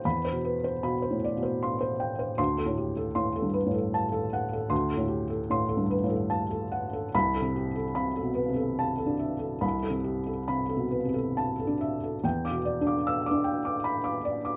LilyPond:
<<
  \new Staff \with { instrumentName = "Felt piano" } { \time 3/4 \key e \minor \tempo 4 = 75 << { r2. | c'''8 r2 r8 | r2. | b''8 r2 r8 |
r2. | r4 e'''16 r4. r16 | } \\ { <c'' b''>16 c''16 b'16 c''16 b''16 c''16 d''16 c''16 c'''16 c''16 g''16 c''16 | r16 a'16 g'16 a'16 c'''16 a'16 b'16 a'16 a''16 a'16 fis''16 a'16 | c'''16 a'16 g'16 a'16 c'''16 a'16 b'16 a'16 a''16 a'16 fis''16 a'16 | r16 a'16 g'16 a'16 b''16 a'16 b'16 a'16 a''16 a'16 e''16 a'16 |
b''16 a'16 g'16 a'16 b''16 a'16 b'16 a'16 a''16 a'16 e''16 a'16 | g''16 d'''16 d''16 d'''8 d'''16 g''16 d'''16 b''16 d'''16 d''16 d'''16 | } >> }
  \new Staff \with { instrumentName = "Felt piano" } { \clef bass \time 3/4 \key e \minor \tuplet 3/2 { e,8 b,4 b,8 a,8 b,8 } r4 | \tuplet 3/2 { d,8 a,4 a,8 g,8 a,8 } r4 | \tuplet 3/2 { d,8 a,4 a,8 g,8 a,8 } r4 | \tuplet 3/2 { c,8 c4 c8 b,8 c8~ c8 d'8 r8 } |
\tuplet 3/2 { c,8 c4 c8 b,8 c8~ c8 d'8 r8 } | \tuplet 3/2 { e,8 b,8 d'8~ d'8 d'4 } r4 | }
>>